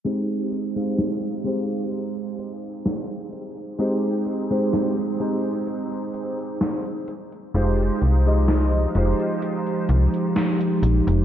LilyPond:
<<
  \new Staff \with { instrumentName = "Electric grand piano" } { \time 4/4 \key aes \major \tempo 4 = 64 <aes c' ees' g' c''>8. <aes c' ees' g' f''>8. <aes c' ees' g' c''>2~ <aes c' ees' g' c''>8 | <aes c' ees' g' c''>8. <aes c' ees' g' c''>8. <aes c' ees' g' c''>16 r2 r16 | <aes ees' f' g' c''>8. <aes ees' f' g' ees''>8. <aes ees' f' g' c''>2~ <aes ees' f' g' c''>8 | }
  \new Staff \with { instrumentName = "Ambient pad" } { \time 4/4 \key aes \major r1 | r1 | <f aes ees' g'>1 | }
  \new Staff \with { instrumentName = "FM bass" } { \clef bass \time 4/4 \key aes \major r1 | r1 | f,,16 r16 c,4 f,,16 r8. c,16 r8. bes,,16 f,,16 | }
  \new DrumStaff \with { instrumentName = "Drums" } \drummode { \time 4/4 hh16 hh16 hh16 hh16 <hh sn>16 hh16 hh8 hh16 hh16 hh16 hh16 <hh sn>16 hh16 hh16 hh16 | hh16 hh16 hh16 hh16 <hh sn>16 hh16 hh16 hh16 hh16 hh16 hh16 hh16 <hh sn>16 hh16 hh16 hh16 | hh16 hh16 hh16 hh16 <hh sn>16 hh16 hh16 hh16 hh16 hh16 hh16 hh16 <hh sn>16 hh16 hh16 hh16 | }
>>